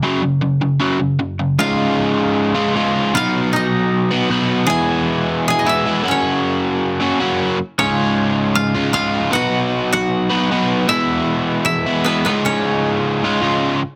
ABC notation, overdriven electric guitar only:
X:1
M:4/4
L:1/8
Q:1/4=155
K:Gb
V:1 name="Overdriven electric guitar" clef=bass
[G,,D,G,] [G,,D,] [G,,D,] [G,,D,] [G,,D,G,] [G,,D,] [G,,D,] [G,,D,] | [D,,A,,D,A,F]4- [D,,A,,D,A,F] [D,,A,,D,A,F] [D,,A,,D,A,F]2 | [C,G,CEGc]4- [C,G,CEGc] [C,G,CEGc] [C,G,CEGc]2 | [=E,,=B,,=E,^G,=B,=E]4- [E,,B,,E,G,B,E] [E,,B,,E,G,B,E] [E,,B,,E,G,B,E] [_G,,D,_G,_B,DG]- |
[G,,D,G,B,DG]4 [G,,D,G,B,DG] [G,,D,G,B,DG]2 z | [D,,A,,D,A,F]4- [D,,A,,D,A,F] [D,,A,,D,A,F] [D,,A,,D,A,F]2 | [C,G,CEGc]4- [C,G,CEGc] [C,G,CEGc] [C,G,CEGc]2 | [=E,,=B,,=E,^G,=B,=E]4- [E,,B,,E,G,B,E] [E,,B,,E,G,B,E] [E,,B,,E,G,B,E] [D,,A,,D,A,F]- |
[D,,A,,D,A,F]4 [D,,A,,D,A,F] [D,,A,,D,A,F]2 z |]